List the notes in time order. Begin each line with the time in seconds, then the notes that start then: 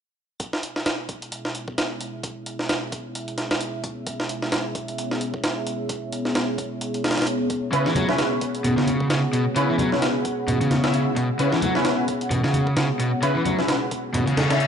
0.39 B3 G#4 C#5 E5, kick, closed hi-hat
0.53 snare
0.63 closed hi-hat
0.76 snare
0.86 snare, closed hi-hat
1.09 kick, closed hi-hat
1.22 closed hi-hat
1.32 closed hi-hat
1.45 snare
1.55 closed hi-hat
1.68 kick
1.78 snare, closed hi-hat
2.01 closed hi-hat
2.23 kick, closed hi-hat
2.46 closed hi-hat
2.59 snare
2.69 snare, closed hi-hat
2.92 kick, closed hi-hat
3.15 closed hi-hat
3.28 closed hi-hat
3.38 snare, closed hi-hat
3.51 snare
3.61 closed hi-hat
3.84 kick, closed hi-hat
4.07 kick, closed hi-hat
4.20 snare
4.29 closed hi-hat
4.42 snare
4.52 snare, closed hi-hat
4.75 kick, closed hi-hat
4.88 closed hi-hat
4.98 closed hi-hat
5.11 snare
5.21 closed hi-hat
5.34 kick
5.44 snare, closed hi-hat
5.67 closed hi-hat
5.89 kick, closed hi-hat
6.12 closed hi-hat
6.25 snare
6.35 snare, closed hi-hat
6.58 kick, closed hi-hat
6.81 closed hi-hat
6.94 closed hi-hat
7.04 snare, closed hi-hat
7.11 snare, closed hi-hat
7.17 snare, closed hi-hat
7.22 snare, closed hi-hat
7.27 closed hi-hat
7.50 kick, closed hi-hat
7.72 C#3 C#4 E4 B4 F#5, kick, closed hi-hat
7.86 E3, snare
7.95 F#3, closed hi-hat, high conga
8.09 C#4 E4 B4, snare
8.18 snare, closed hi-hat
8.41 kick, closed hi-hat
8.55 closed hi-hat
8.64 B2, closed hi-hat, low conga
8.77 C#3, snare
8.86 closed hi-hat, high conga
9.00 kick
9.10 C#3, snare, closed hi-hat
9.33 B2, closed hi-hat
9.56 C#3 C#4 E4 B4, kick, closed hi-hat
9.69 E3
9.78 F#3, closed hi-hat, high conga
9.92 C#4 E4 B4, snare
10.02 snare, closed hi-hat
10.25 kick, closed hi-hat
10.47 B2, closed hi-hat, low conga
10.61 C#3, closed hi-hat
10.71 snare, closed hi-hat, high conga
10.84 C#4 E4 E5, snare
10.93 C#3, closed hi-hat
11.16 B2, kick, closed hi-hat
11.39 C#3 C#4 E4 B4, kick, closed hi-hat
11.52 E3, snare
11.62 F#3, closed hi-hat, high conga
11.75 C#4 E4 B4, snare
11.85 snare, closed hi-hat
12.08 kick, closed hi-hat
12.21 closed hi-hat
12.30 B2, closed hi-hat, low conga
12.44 C#3, snare
12.53 closed hi-hat, high conga
12.67 kick
12.77 C#3, snare, closed hi-hat
12.99 B2, closed hi-hat
13.22 C#3 C#4 E4 B4, kick, closed hi-hat
13.35 E3
13.45 F#3, closed hi-hat, high conga
13.59 C#4 E4 B4, snare
13.68 snare, closed hi-hat
13.91 kick, closed hi-hat
14.14 B2, closed hi-hat, reverse cymbal, low conga
14.26 C#3, closed hi-hat
14.37 snare, closed hi-hat, high conga
14.50 C#4 E4 E5, snare, closed hi-hat
14.60 C#3, closed hi-hat